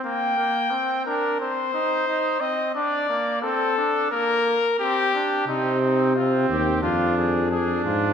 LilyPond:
<<
  \new Staff \with { instrumentName = "Trumpet" } { \time 4/4 \key c \minor \tempo 4 = 88 g''4. bes'8 c''4. ees''8 | d''4 a'4 bes'4 g'4 | ees'8 ees'8 f'8 g'8 f'8 aes'8 aes'8 f'8 | }
  \new Staff \with { instrumentName = "Trumpet" } { \time 4/4 \key c \minor bes8 bes8 c'8 d'8 c'8 ees'8 ees'8 c'8 | d'8 bes8 c'8 d'8 bes8 r8 c'8 d'8 | c'4 c'4 d'4 d'4 | }
  \new Staff \with { instrumentName = "Bass trombone" } { \clef bass \time 4/4 \key c \minor r1 | r1 | c4. ees,8 f,4. aes,8 | }
>>